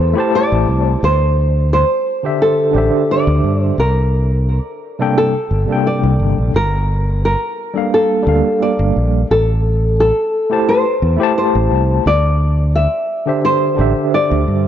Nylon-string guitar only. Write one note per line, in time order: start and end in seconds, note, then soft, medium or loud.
0.00 0.35 C5 loud
0.35 0.88 D5 loud
0.88 1.04 C5 loud
1.04 1.68 C5 loud
1.73 2.37 C5 medium
2.42 3.12 A4 medium
3.11 3.63 D5 medium
3.63 3.79 C5 medium
3.80 5.17 A#4 medium
5.18 5.86 A4 medium
5.87 6.51 D5 medium
6.56 7.24 A#4 loud
7.25 7.94 A#4 medium
7.94 8.58 A4 medium
8.62 9.27 D5 medium
9.31 9.96 A4 medium
10.00 10.65 A4 medium
10.69 11.37 C5 loud
11.38 12.07 C5 medium
12.07 12.71 D5 loud
12.75 13.40 E5 medium
13.45 14.09 C5 loud
14.14 14.68 D5 medium